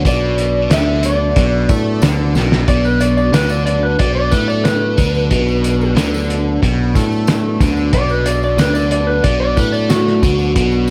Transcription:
Already playing: F#3 B3 D4
0.05 B1 B2 D5, kick, closed hi-hat, tambourine
0.38 closed hi-hat, tambourine
0.70 D2 D3 E5, snare, closed hi-hat, tambourine
1.03 D5, closed hi-hat, tambourine
1.36 B1 B2, kick, closed hi-hat, tambourine
1.69 A2 A3, kick, closed hi-hat, tambourine
2.02 D2 D3, snare, closed hi-hat, tambourine
2.35 B1 B2, snare, tambourine
2.52 snare
2.67 B1 B2 F#3 B3 D4 D5, kick, closed hi-hat
2.84 B4, tambourine
3.00 D5, closed hi-hat, tambourine
3.17 D5, tambourine
3.32 D2 D3 B4, snare, closed hi-hat, tambourine
3.49 D5, tambourine
3.66 D5, closed hi-hat, tambourine
3.83 B4
3.99 B1 B2 D5, kick, closed hi-hat
4.15 D5
4.31 A2 A3 B4, kick, snare, closed hi-hat, tambourine
4.48 D5, tambourine
4.64 B4, snare, closed hi-hat, tambourine
4.98 D2 D3, kick, closed hi-hat, tambourine
5.15 tambourine
5.31 B1 B2, kick, closed hi-hat
5.48 tambourine
5.64 closed hi-hat, tambourine
5.81 tambourine
5.95 D2 D3, snare, closed hi-hat, tambourine
6.14 tambourine
6.30 closed hi-hat, tambourine
6.63 B1 B2, kick, closed hi-hat
6.95 A2 A3, kick, snare, closed hi-hat, tambourine
7.12 tambourine
7.27 snare, closed hi-hat, tambourine
7.60 D2 D3, kick, snare, closed hi-hat, tambourine
7.77 tambourine
7.93 B1 B2 D5, kick, closed hi-hat
8.09 B4, tambourine
8.26 D5, closed hi-hat, tambourine
8.43 D5, tambourine
8.57 D2 D3 B4, snare, closed hi-hat, tambourine
8.74 D5, tambourine
8.91 D5, closed hi-hat, tambourine
9.07 B4
9.23 B1 B2 D5, kick, closed hi-hat
9.40 D5
9.56 A2 A3 B4, kick, closed hi-hat, tambourine
9.72 D5, tambourine
9.89 F#4, snare, closed hi-hat, tambourine
10.07 snare
10.22 D2 D3, kick, closed hi-hat, tambourine
10.39 tambourine
10.56 B1 B2, kick, closed hi-hat
10.72 tambourine

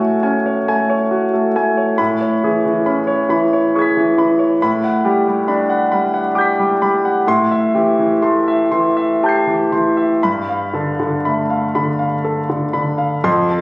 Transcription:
Already playing: A2 F#4 C#5 G#5
0.00 A3
0.23 C#4 G#5
0.46 C#5
0.68 A3 G#5
0.90 C#5
1.11 F#4
1.34 A3
1.56 A3 G#5
1.77 C#5
1.98 A2 B5
2.21 C#5
2.44 E3 G#4
2.66 E3
2.86 C#4 B5
3.07 C#5
3.29 E3 B5
3.53 C#5
3.75 G#4 C#6 G#6
3.82 B6
3.97 E3
4.17 E3 B5
4.39 C#5
4.62 A2 B5
4.84 F#5
5.04 G3 G4
5.28 G3
5.48 D4 B5
5.70 F#5
5.92 G3 B5
6.14 F#5
6.35 G4 D6 G6
6.41 B6
6.59 G3
6.82 G3 B5
7.05 F#5
7.27 A2 C6
7.51 E5
7.75 E3 G4
7.99 E3
8.22 A3 C6
8.48 E5
8.72 E3 C6
8.97 E5
9.23 G4 A5 G6
9.29 C7
9.47 E3
9.72 E3 C6
9.97 E5
10.23 G2 B5
10.49 F5
10.74 D3 A4
11.00 D3
11.25 A3 B5
11.50 F5
11.75 D3 B5
11.99 F5
12.24 A4
12.50 D3
12.73 D3 B5
12.98 F5
13.24 F2 C6
13.50 A4

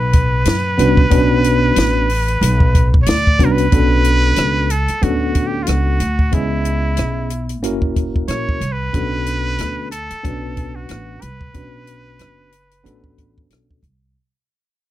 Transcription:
Already playing: B1 B4
0.13 kick, closed hi-hat
0.45 F#2, snare, closed hi-hat
0.78 C2 B3 C#4 D4 F#4 B4, closed hi-hat
0.97 kick
1.10 B1 B3 C#4 D4 F#4 B4, kick, closed hi-hat
1.44 closed hi-hat
1.76 A1, snare, closed hi-hat
2.10 open hi-hat
2.28 closed hi-hat
2.41 B1, closed hi-hat
2.60 kick
2.75 kick, closed hi-hat
2.94 kick
3.02 C#5
3.06 D2 D5, snare, closed hi-hat
3.27 kick
3.39 C2 B3 C#4 D4 F#4 B4, kick, closed hi-hat
3.45 A#4
3.52 B4
3.58 closed hi-hat
3.72 B1 B3 C#4 D4 F#4 A4, kick, closed hi-hat
4.04 closed hi-hat
4.36 C#2, cross-stick, closed hi-hat
4.70 A4, closed hi-hat
4.88 muted upright bass stroke, closed hi-hat
5.02 D2 B3 C#4 D4 F#4 A4, kick, closed hi-hat
5.35 kick, closed hi-hat
5.47 G4
5.63 F4, closed hi-hat
5.68 C#2 F#4, cross-stick
6.00 D2, closed hi-hat
6.19 kick
6.32 C#2 B3 C#4 E4 G#4 D#5, kick, closed hi-hat
6.65 closed hi-hat
6.97 B1, cross-stick, closed hi-hat
7.30 closed hi-hat
7.49 closed hi-hat
7.63 F#1 A#3 C#4 E4 F#4 A#4, closed hi-hat
7.82 kick
7.96 kick, closed hi-hat
8.16 kick
8.28 A#1 C#5, cross-stick, closed hi-hat
8.49 kick
8.61 C2, closed hi-hat
8.72 B4
8.93 B1 B3 C#4 D4 F#4 A4, kick, closed hi-hat
9.26 closed hi-hat
9.59 D2, cross-stick, closed hi-hat
9.91 A4, closed hi-hat
10.10 muted upright bass stroke, closed hi-hat
10.23 B1 B3 C#4 D4 F#4 B4, kick, closed hi-hat
10.57 kick, closed hi-hat
10.75 F#4
10.89 A1, cross-stick, closed hi-hat
11.22 C2 B4, closed hi-hat
11.41 kick
11.54 B1 B3 C#4 D4 F#4 B4, kick, closed hi-hat
11.87 closed hi-hat
12.19 F#1, cross-stick, closed hi-hat
12.52 closed hi-hat
12.71 closed hi-hat
12.83 A1 B3 C#4 D4 F#4 A4, closed hi-hat
13.04 kick
13.18 kick, closed hi-hat
13.38 kick
13.50 B1, cross-stick, closed hi-hat
13.71 kick
13.83 C2, kick, closed hi-hat

